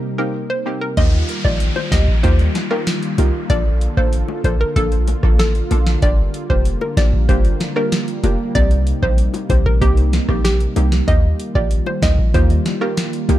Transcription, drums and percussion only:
0.97 kick loud
0.97 closed hi-hat medium
1.29 closed hi-hat medium
1.45 kick medium
1.60 closed hi-hat medium
1.76 high bongo medium
1.92 kick loud
1.92 snare loud
1.92 closed hi-hat medium
1.92 high bongo medium
2.08 kick medium
2.23 kick medium
2.23 closed hi-hat medium
2.39 closed hi-hat medium
2.55 snare medium
2.55 closed hi-hat medium
2.55 high bongo medium
2.71 cross-stick medium
2.87 snare loud
2.87 closed hi-hat medium
3.03 closed hi-hat soft
3.18 closed hi-hat medium
3.18 high bongo medium
3.18 low bongo medium
3.50 kick loud
3.50 closed hi-hat medium
3.81 closed hi-hat medium
3.97 kick medium
4.13 closed hi-hat medium
4.28 high bongo medium
4.44 kick loud
4.44 closed hi-hat medium
4.44 high bongo medium
4.76 kick medium
4.76 closed hi-hat medium
4.92 closed hi-hat medium
5.08 closed hi-hat medium
5.08 high bongo medium
5.23 kick medium
5.23 cross-stick medium
5.39 snare loud
5.39 closed hi-hat medium
5.55 closed hi-hat soft
5.71 closed hi-hat medium
5.71 high bongo medium
5.71 low bongo medium
5.87 snare medium
6.02 kick loud
6.02 closed hi-hat medium
6.34 closed hi-hat medium
6.50 kick medium
6.65 closed hi-hat medium
6.81 high bongo medium
6.97 kick loud
6.97 snare loud
6.97 closed hi-hat medium
6.97 high bongo medium
7.13 kick loud
7.29 kick medium
7.29 closed hi-hat medium
7.45 closed hi-hat medium
7.60 snare medium
7.60 closed hi-hat medium
7.60 high bongo medium
7.76 cross-stick medium
7.92 snare loud
7.92 closed hi-hat medium
8.08 closed hi-hat soft
8.24 closed hi-hat medium
8.24 high bongo medium
8.24 low bongo medium
8.55 kick loud
8.55 closed hi-hat medium
8.71 closed hi-hat medium
8.87 closed hi-hat medium
9.03 kick medium
9.18 closed hi-hat medium
9.34 closed hi-hat medium
9.34 high bongo medium
9.49 kick loud
9.49 closed hi-hat medium
9.49 high bongo medium
9.66 kick medium
9.81 kick medium
9.81 closed hi-hat medium
9.97 closed hi-hat medium
10.13 snare medium
10.13 closed hi-hat medium
10.13 high bongo medium
10.29 kick medium
10.29 cross-stick medium
10.45 snare loud
10.45 closed hi-hat medium
10.60 closed hi-hat soft
10.76 closed hi-hat medium
10.76 high bongo medium
10.76 low bongo medium
10.92 snare medium
11.08 kick loud
11.08 closed hi-hat medium
11.40 closed hi-hat medium
11.55 kick medium
11.71 closed hi-hat medium
11.86 high bongo medium
12.02 kick loud
12.02 snare loud
12.02 closed hi-hat medium
12.02 high bongo medium
12.19 kick medium
12.34 kick medium
12.34 closed hi-hat medium
12.50 closed hi-hat medium
12.66 snare medium
12.66 closed hi-hat medium
12.66 high bongo medium
12.81 cross-stick medium
12.97 snare loud
12.97 closed hi-hat medium
13.13 closed hi-hat soft
13.29 closed hi-hat medium
13.29 high bongo medium
13.29 low bongo medium

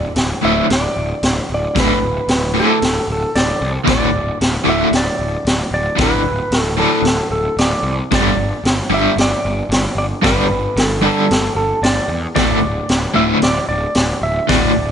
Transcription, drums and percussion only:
0.16 snare loud
0.16 open hi-hat medium
0.70 snare loud
0.70 open hi-hat medium
1.23 snare loud
1.23 open hi-hat medium
1.76 kick loud
1.76 snare loud
1.76 open hi-hat medium
2.28 snare loud
2.28 open hi-hat medium
2.82 snare loud
2.82 open hi-hat medium
3.35 snare loud
3.35 open hi-hat medium
3.87 kick loud
3.87 snare loud
3.87 open hi-hat medium
4.41 snare loud
4.41 open hi-hat medium
4.93 snare loud
4.93 open hi-hat medium
5.46 snare loud
5.46 open hi-hat medium
5.98 kick loud
5.98 snare loud
5.98 open hi-hat medium
6.52 snare loud
6.52 open hi-hat medium
7.05 snare loud
7.05 open hi-hat medium
7.58 snare loud
7.58 open hi-hat medium
8.11 kick loud
8.11 snare loud
8.11 open hi-hat soft
8.65 snare loud
8.65 open hi-hat medium
9.18 snare loud
9.18 open hi-hat medium
9.71 snare loud
9.71 open hi-hat medium
10.24 kick loud
10.24 snare loud
10.24 open hi-hat medium
10.77 snare loud
10.77 open hi-hat medium
11.31 snare loud
11.31 open hi-hat medium
11.84 snare loud
11.84 open hi-hat medium
12.36 kick loud
12.36 snare loud
12.36 open hi-hat medium
12.89 snare loud
12.89 open hi-hat medium
13.42 snare loud
13.42 open hi-hat medium
13.95 snare loud
13.95 open hi-hat medium
14.49 kick loud
14.49 snare loud
14.49 open hi-hat medium

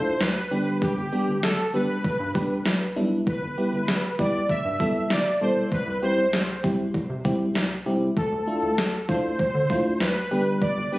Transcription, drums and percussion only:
0.21 snare loud
0.82 kick loud
1.43 snare loud
2.04 kick medium
2.35 kick medium
2.66 snare loud
3.27 kick loud
3.88 snare loud
4.19 kick medium
4.49 kick medium
4.80 kick medium
5.10 snare loud
5.72 kick loud
6.33 snare loud
6.64 kick loud
6.94 kick medium
7.25 kick medium
7.55 snare loud
8.17 kick loud
8.78 snare loud
9.09 kick loud
9.39 kick medium
9.70 kick medium
10.00 snare loud
10.62 kick loud

